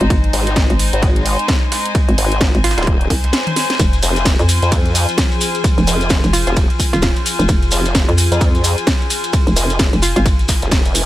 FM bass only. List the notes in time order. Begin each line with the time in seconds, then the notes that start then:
0.01 G#1
0.10 G#1
0.70 G#1
2.09 G#1
2.55 G#1
3.10 C2
3.80 F1
4.39 F2
5.78 F1
6.24 F1
6.93 D#1
7.39 F1
7.49 F1
8.09 F2
9.47 F1
9.93 F1
10.16 G#1